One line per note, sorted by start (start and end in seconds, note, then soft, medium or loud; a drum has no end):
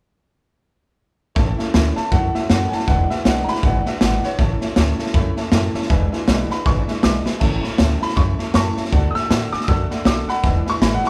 1.35 1.56 A1 loud
1.35 1.59 A2 medium
1.35 1.59 E3 medium
1.35 1.59 A3 medium
1.35 1.58 C#4 medium
1.35 1.57 E4 medium
1.35 1.49 C#5 loud
1.35 1.50 E5 loud
1.35 1.50 A5 loud
1.35 kick loud
1.35 snare soft
1.58 1.73 A3 soft
1.58 1.74 C#4 medium
1.58 1.74 E4 medium
1.58 1.68 C#5 medium
1.58 1.68 E5 medium
1.58 1.68 A5 medium
1.58 muted upright bass stroke medium
1.58 snare soft
1.73 1.94 D2 medium
1.73 1.97 A2 medium
1.73 1.97 E3 medium
1.73 1.97 A3 medium
1.73 1.97 C#4 medium
1.73 1.96 E4 loud
1.73 1.87 C#5 medium
1.73 1.88 E5 medium
1.73 1.88 B5 medium
1.73 snare loud
1.73 hi-hat pedal medium
1.96 2.11 A3 soft
1.96 2.12 C#4 soft
1.96 2.12 E4 medium
1.96 2.06 C#5 medium
1.96 2.06 E5 medium
1.96 2.11 A5 loud
1.96 2.06 A5 medium
1.96 muted upright bass stroke medium
1.96 snare soft
2.11 2.32 F#2 medium
2.11 2.34 E3 medium
2.11 2.35 A3 medium
2.11 2.34 C#4 medium
2.11 2.33 E4 medium
2.11 2.26 C#5 loud
2.11 2.26 E5 medium
2.11 2.34 F#5 medium
2.11 2.26 A5 loud
2.11 kick loud
2.11 snare soft
2.34 2.49 A3 soft
2.34 2.49 C#4 medium
2.34 2.49 E4 medium
2.34 2.44 C#5 medium
2.34 2.50 E5 medium
2.34 2.44 E5 medium
2.34 2.44 A5 medium
2.34 muted upright bass stroke medium
2.34 snare soft
2.50 2.70 F#2 medium
2.50 2.72 A2 medium
2.50 2.72 E3 medium
2.50 2.73 A3 medium
2.50 2.72 C#4 medium
2.50 2.71 E4 medium
2.50 2.64 C#5 medium
2.50 2.64 E5 medium
2.50 2.72 F#5 medium
2.50 2.64 A5 medium
2.50 snare loud
2.50 hi-hat pedal medium
2.69 2.88 E4 medium
2.69 2.71 G#5 medium
2.69 snare soft
2.73 2.89 A3 soft
2.73 2.88 C#4 medium
2.73 2.82 C#5 medium
2.73 2.82 E5 medium
2.73 2.88 A5 medium
2.73 2.82 A5 medium
2.73 muted upright bass stroke medium
2.80 snare soft
2.87 3.07 E1 loud
2.87 3.11 E2 medium
2.87 3.11 B2 medium
2.87 3.11 E3 medium
2.87 3.11 G#3 medium
2.87 3.11 D4 medium
2.87 3.10 E4 medium
2.87 3.01 B4 medium
2.87 3.01 E5 medium
2.87 3.10 F#5 medium
2.87 3.02 G#5 loud
2.87 kick loud
2.87 snare soft
3.10 3.26 E3 soft
3.10 3.27 G#3 soft
3.10 3.26 D4 soft
3.10 3.26 E4 medium
3.10 3.19 B4 medium
3.10 3.25 E5 medium
3.10 3.20 E5 medium
3.10 3.20 G#5 medium
3.10 muted upright bass stroke medium
3.10 snare soft
3.25 3.45 B1 medium
3.25 3.49 E2 medium
3.25 3.49 B2 medium
3.25 3.49 E3 medium
3.25 3.49 G#3 medium
3.25 3.48 D4 medium
3.25 3.48 E4 medium
3.25 3.39 B4 medium
3.25 3.39 E5 medium
3.25 3.48 F#5 medium
3.25 3.39 G#5 medium
3.25 snare loud
3.25 hi-hat pedal medium
3.44 3.57 B4 medium
3.44 3.57 E5 medium
3.44 3.57 G#5 medium
3.44 3.47 A#5 medium
3.44 snare soft
3.48 3.63 E3 soft
3.48 3.63 G#3 soft
3.48 3.64 D4 medium
3.48 3.64 E4 medium
3.48 3.63 B5 loud
3.48 muted upright bass stroke medium
3.55 snare soft
3.63 3.83 G#1 medium
3.63 3.86 E3 medium
3.63 3.87 G#3 medium
3.63 3.86 D4 medium
3.63 3.85 E4 medium
3.63 3.77 B4 loud
3.63 3.77 E5 medium
3.63 3.86 F#5 medium
3.63 3.77 G#5 loud
3.63 kick loud
3.63 snare soft
3.86 4.00 E3 soft
3.86 4.01 G#3 medium
3.86 4.01 D4 medium
3.86 4.01 E4 medium
3.86 3.95 B4 medium
3.86 3.95 E5 medium
3.86 4.01 E5 medium
3.86 3.95 F#5 medium
3.86 muted upright bass stroke medium
3.86 snare soft
4.01 4.21 G#1 medium
4.01 4.24 E2 medium
4.01 4.24 B2 medium
4.01 4.24 E3 medium
4.01 4.24 G#3 medium
4.01 4.23 D4 medium
4.01 4.23 E4 medium
4.01 4.15 B4 medium
4.01 4.15 E5 medium
4.01 4.24 F#5 medium
4.01 4.15 B5 medium
4.01 snare loud
4.01 hi-hat pedal medium
4.23 4.38 E3 medium
4.23 4.39 G#3 soft
4.23 4.39 D4 medium
4.23 4.39 E4 medium
4.23 4.33 B4 medium
4.23 5.34 C#5 loud
4.23 4.33 E5 medium
4.23 4.33 F#5 medium
4.23 muted upright bass stroke medium
4.23 snare soft
4.38 4.59 A1 loud
4.38 4.61 A2 medium
4.38 4.62 E3 medium
4.38 4.62 A3 medium
4.38 4.61 C#4 medium
4.38 4.60 E4 medium
4.38 4.53 C#5 medium
4.38 4.53 E5 medium
4.38 4.53 A5 loud
4.38 kick loud
4.38 snare soft
4.60 4.76 A3 soft
4.60 4.76 C#4 medium
4.60 4.76 E4 medium
4.60 4.70 C#5 medium
4.60 4.70 E5 medium
4.60 4.71 A5 medium
4.60 muted upright bass stroke medium
4.60 snare soft
4.76 4.97 D2 loud
4.76 4.99 A2 medium
4.76 5.00 E3 medium
4.76 5.00 A3 loud
4.76 4.99 C#4 loud
4.76 4.98 E4 medium
4.76 4.90 C#5 medium
4.76 4.90 E5 medium
4.76 4.91 A5 loud
4.76 snare loud
4.76 hi-hat pedal medium
4.99 5.14 A3 medium
4.99 5.15 C#4 medium
4.99 5.15 E4 medium
4.99 5.08 C#5 loud
4.99 5.08 E5 medium
4.99 5.09 A5 loud
4.99 muted upright bass stroke medium
4.99 snare soft
5.06 snare soft
5.14 5.34 F#2 medium
5.14 5.37 E3 medium
5.14 5.38 A3 medium
5.14 5.37 C#4 medium
5.14 5.36 E4 medium
5.14 5.28 C#5 loud
5.14 5.28 E5 loud
5.14 5.28 B5 loud
5.14 kick loud
5.14 snare soft
5.37 5.52 A3 medium
5.37 5.52 C#4 medium
5.37 5.52 E4 medium
5.37 5.46 C#5 medium
5.37 5.47 E5 medium
5.37 5.47 A5 loud
5.37 muted upright bass stroke medium
5.37 snare soft
5.52 5.72 F#2 medium
5.52 5.75 A2 medium
5.52 5.75 E3 medium
5.52 5.75 A3 medium
5.52 5.74 C#4 medium
5.52 5.73 E4 loud
5.52 5.66 C#5 medium
5.52 5.66 E5 medium
5.52 5.66 A5 loud
5.52 snare loud
5.52 hi-hat pedal medium
5.74 5.90 A3 medium
5.74 5.90 C#4 medium
5.74 5.90 E4 medium
5.74 5.84 C#5 loud
5.74 5.84 E5 medium
5.74 5.84 A5 loud
5.74 muted upright bass stroke medium
5.74 snare soft
5.82 snare soft
5.89 6.10 E1 medium
5.89 6.13 E2 medium
5.89 6.13 B2 medium
5.89 6.13 E3 loud
5.89 6.12 G#3 medium
5.89 6.12 D4 medium
5.89 6.11 E4 loud
5.89 6.03 B4 loud
5.89 6.04 E5 loud
5.89 6.04 G#5 loud
5.89 kick loud
5.89 snare soft
6.12 6.27 E3 soft
6.12 6.27 G#3 medium
6.12 6.28 D4 medium
6.12 6.28 E4 medium
6.12 6.22 B4 medium
6.12 6.22 E5 medium
6.12 6.22 G#5 medium
6.12 muted upright bass stroke medium
6.12 snare soft
6.28 6.48 B1 loud
6.28 6.51 E2 medium
6.28 6.51 B2 medium
6.28 6.51 E3 medium
6.28 6.51 G#3 loud
6.28 6.51 D4 loud
6.28 6.50 E4 medium
6.28 6.42 B4 medium
6.28 6.42 E5 medium
6.28 6.42 B5 loud
6.28 snare loud
6.28 hi-hat pedal medium
6.50 6.64 E3 soft
6.50 6.65 G#3 medium
6.50 6.66 D4 soft
6.50 6.66 E4 medium
6.50 6.60 B4 medium
6.50 6.60 E5 medium
6.50 6.60 F#5 medium
6.50 6.66 B5 medium
6.50 muted upright bass stroke medium
6.50 snare soft
6.65 6.86 G#1 medium
6.65 6.88 E3 medium
6.65 6.89 G#3 medium
6.65 6.88 D4 medium
6.65 6.88 E4 medium
6.65 6.79 B4 loud
6.65 6.80 E5 loud
6.65 6.80 G#5 loud
6.65 7.03 C#6 medium
6.65 kick loud
6.65 snare soft
6.87 7.03 E3 medium
6.87 7.03 G#3 soft
6.87 7.03 D4 medium
6.87 7.04 E4 medium
6.87 6.97 B4 medium
6.87 6.97 E5 medium
6.87 6.97 G#5 medium
6.87 muted upright bass stroke medium
6.87 snare soft
7.02 7.24 B1 medium
7.02 7.26 E2 medium
7.02 7.27 B2 medium
7.02 7.27 E3 medium
7.02 7.26 G#3 medium
7.02 7.25 D4 medium
7.02 7.25 E4 medium
7.02 7.17 B4 medium
7.02 7.17 E5 medium
7.02 7.17 G#5 medium
7.02 7.26 D6 loud
7.02 snare loud
7.02 hi-hat pedal medium
7.25 7.40 E3 soft
7.25 7.41 G#3 soft
7.25 7.41 D4 medium
7.25 7.41 E4 medium
7.25 7.35 B4 medium
7.25 7.35 E5 medium
7.25 7.35 B5 medium
7.25 muted upright bass stroke medium
7.25 snare medium
7.40 7.61 A1 medium
7.40 7.64 A2 medium
7.40 7.64 E3 medium
7.40 7.64 A3 medium
7.40 7.63 C#4 medium
7.40 7.62 E4 loud
7.40 7.54 C#5 loud
7.40 7.54 E5 loud
7.40 7.55 A5 loud
7.40 kick loud
7.40 snare soft
7.40 crash medium
7.62 7.78 A3 medium
7.62 7.78 C#4 medium
7.62 7.78 E4 medium
7.62 7.72 C#5 medium
7.62 7.73 E5 medium
7.62 7.73 B5 medium
7.62 muted upright bass stroke medium
7.62 snare soft
7.78 7.99 D2 medium
7.78 8.02 A2 medium
7.78 8.02 E3 medium
7.78 8.02 A3 medium
7.78 8.01 C#4 loud
7.78 8.00 E4 loud
7.78 7.93 C#5 medium
7.78 7.93 E5 medium
7.78 7.93 A5 loud
7.78 snare loud
7.78 hi-hat pedal medium
8.01 8.16 A3 soft
8.01 8.17 C#4 medium
8.01 8.17 E4 medium
8.01 8.10 C#5 medium
8.01 8.11 E5 medium
8.01 8.11 A5 medium
8.01 8.17 B5 loud
8.01 muted upright bass stroke medium
8.01 snare soft
8.09 snare soft
8.16 8.37 F#2 medium
8.16 8.40 E3 medium
8.16 8.39 A3 medium
8.16 8.39 C#4 medium
8.16 8.38 E4 medium
8.16 8.30 C#5 medium
8.16 8.30 E5 medium
8.16 8.31 B5 loud
8.16 8.54 C#6 medium
8.16 kick loud
8.16 snare soft
8.39 8.53 A3 soft
8.39 8.54 C#4 medium
8.39 8.54 E4 medium
8.39 8.48 C#5 medium
8.39 8.48 E5 medium
8.39 8.49 A5 medium
8.39 muted upright bass stroke medium
8.39 snare soft
8.53 8.75 F#2 medium
8.53 8.77 A2 medium
8.53 8.77 E3 medium
8.53 8.77 A3 medium
8.53 8.77 C#4 medium
8.53 8.76 E4 medium
8.53 8.68 C#5 medium
8.53 8.68 E5 medium
8.53 8.76 A5 medium
8.53 8.68 A5 medium
8.53 8.77 C#6 loud
8.53 snare loud
8.53 hi-hat pedal medium
8.76 8.91 A3 soft
8.76 8.92 C#4 medium
8.76 8.92 E4 medium
8.76 8.86 C#5 medium
8.76 8.86 E5 medium
8.76 8.87 A5 medium
8.76 muted upright bass stroke medium
8.76 snare soft
8.85 snare soft
8.92 9.12 D2 medium
8.92 9.15 D3 medium
8.92 9.15 A3 medium
8.92 9.14 D4 medium
8.92 9.14 F#4 loud
8.92 9.06 D5 loud
8.92 9.06 F#5 loud
8.92 9.06 A5 loud
8.92 kick loud
8.92 snare soft
9.11 9.13 D#6 medium
9.15 9.29 A3 soft
9.15 9.30 D4 medium
9.15 9.30 F#4 medium
9.15 9.24 D5 medium
9.15 9.24 F#5 medium
9.15 9.25 A5 medium
9.15 9.30 E6 loud
9.15 muted upright bass stroke medium
9.15 snare soft
9.29 9.50 A2 medium
9.29 9.53 D3 medium
9.29 9.53 A3 medium
9.29 9.53 D4 medium
9.29 9.52 F#4 medium
9.29 9.44 D5 medium
9.29 9.44 F#5 medium
9.29 9.44 A5 medium
9.29 snare loud
9.29 hi-hat pedal medium
9.52 9.67 A3 soft
9.52 9.68 D4 medium
9.52 9.68 F#4 medium
9.52 9.62 D5 medium
9.52 9.62 F#5 medium
9.52 9.62 G#5 medium
9.52 9.68 D6 loud
9.52 muted upright bass stroke medium
9.52 snare soft
9.61 9.67 D#6 medium
9.61 snare soft
9.68 9.88 F#2 loud
9.68 9.91 D3 medium
9.68 9.91 A3 medium
9.68 9.90 D4 medium
9.68 9.89 F#4 medium
9.68 9.82 D5 medium
9.68 9.82 F#5 medium
9.68 9.82 A5 loud
9.68 9.90 E6 loud
9.68 kick loud
9.68 snare soft
9.90 10.05 A3 soft
9.90 10.05 D4 medium
9.90 10.05 F#4 medium
9.90 10.00 D5 medium
9.90 10.00 F#5 medium
9.90 10.00 B5 medium
9.90 muted upright bass stroke medium
9.90 snare soft
10.05 10.26 B1 loud
10.05 10.28 D3 medium
10.05 10.29 A3 medium
10.05 10.28 D4 medium
10.05 10.27 F#4 medium
10.05 10.20 D5 medium
10.05 10.20 F#5 medium
10.05 10.20 A5 medium
10.05 10.28 D6 loud
10.05 snare loud
10.05 hi-hat pedal medium
10.28 10.44 A3 soft
10.28 10.44 D4 soft
10.28 10.44 F#4 medium
10.28 10.38 D5 medium
10.28 10.43 F#5 medium
10.28 10.38 F#5 medium
10.28 10.38 A5 medium
10.28 10.44 B5 loud
10.28 muted upright bass stroke medium
10.28 snare soft
10.43 10.64 E1 medium
10.43 10.67 E2 medium
10.43 10.67 B2 medium
10.43 10.67 E3 medium
10.43 10.66 G#3 medium
10.43 10.66 D4 medium
10.43 10.65 E4 medium
10.43 10.57 B4 loud
10.43 10.58 E5 medium
10.43 10.58 G#5 loud
10.43 kick loud
10.43 snare soft
10.66 10.81 E3 soft
10.66 10.82 G#3 medium
10.66 10.82 D4 medium
10.66 10.82 E4 medium
10.66 10.75 B4 medium
10.66 10.76 E5 medium
10.66 10.76 G#5 medium
10.66 muted upright bass stroke medium
10.66 snare soft
10.70 10.82 C#6 loud
10.81 11.01 A1 medium
10.81 11.05 E2 medium
10.81 11.05 B2 medium
10.81 11.05 E3 medium
10.81 11.05 G#3 medium
10.81 11.04 D4 loud
10.81 11.03 E4 medium
10.81 10.95 B4 medium
10.81 10.95 E5 medium
10.81 10.95 G#5 medium
10.81 10.94 B5 loud
10.81 snare loud
10.81 hi-hat pedal medium
10.94 11.07 F#5 loud
11.04 11.10 E3 medium
11.04 11.10 G#3 soft
11.04 11.10 D4 medium
11.04 11.10 E4 medium
11.04 11.10 B4 medium
11.04 11.10 E5 medium
11.04 11.10 G#5 medium
11.04 muted upright bass stroke medium
11.04 snare soft